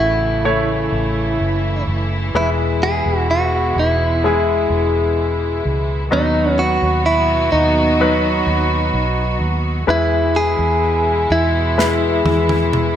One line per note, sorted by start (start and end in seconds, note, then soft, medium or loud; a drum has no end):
0.00 0.88 A1 medium
0.00 2.36 A2 soft
0.00 2.31 C#3 medium
0.00 6.08 E3 medium
0.00 0.35 A3 medium
0.00 2.31 A3 medium
0.00 0.35 E4 soft
0.00 1.83 E4 medium
0.00 6.08 E4 medium
0.00 0.36 C#5 medium
0.45 2.25 A3 medium
0.45 2.25 E4 soft
0.45 2.25 C#5 medium
0.92 1.36 A1 medium
1.40 1.84 F#1 medium
1.87 2.31 F#1 medium
2.35 3.01 E1 medium
2.35 6.08 B2 medium
2.35 3.73 E3 medium
2.35 4.14 G#3 medium
2.35 6.08 G#3 medium
2.35 4.14 E4 medium
2.35 2.49 E4 medium
2.35 4.15 B4 medium
2.83 3.26 G#4 medium
3.06 3.72 E1 medium
3.31 3.78 F#4 medium
3.76 4.66 E1 medium
3.76 5.62 E4 medium
4.24 6.02 G#3 medium
4.24 6.03 E4 medium
4.24 6.03 G#4 medium
4.70 5.60 E1 medium
5.65 6.09 C#2 medium
6.11 6.79 D#2 medium
6.11 7.49 B2 soft
6.11 9.85 B2 medium
6.11 7.90 F#3 medium
6.11 9.85 F#3 medium
6.11 9.85 B3 medium
6.11 6.61 D#4 medium
6.11 9.85 F#4 medium
6.11 7.90 B4 medium
6.11 7.90 D#5 soft
6.59 7.03 F#4 medium
6.82 7.49 D#2 medium
7.06 7.49 E4 medium
7.52 8.43 D#2 medium
7.52 9.37 D#4 medium
8.00 9.79 F#3 medium
8.00 9.79 D#4 medium
8.00 9.79 B4 medium
8.47 8.90 D#2 medium
8.93 9.37 B1 medium
9.40 9.85 D#2 medium
9.87 10.55 E2 medium
9.87 12.96 B2 medium
9.87 11.26 E3 medium
9.87 12.96 E3 medium
9.87 11.68 G#3 medium
9.87 12.96 G#3 medium
9.87 11.68 E4 medium
9.87 12.96 E4 medium
9.87 10.38 E4 medium
9.87 11.68 B4 medium
10.36 11.33 G#4 medium
10.59 11.26 E2 medium
11.30 12.21 E2 medium
11.30 12.96 E4 medium
11.78 12.96 G#3 medium
11.78 12.96 E4 medium
11.78 12.96 B4 medium
11.78 snare soft
12.25 12.96 E2 medium
12.25 high tom medium
12.49 high tom medium
12.73 mid tom medium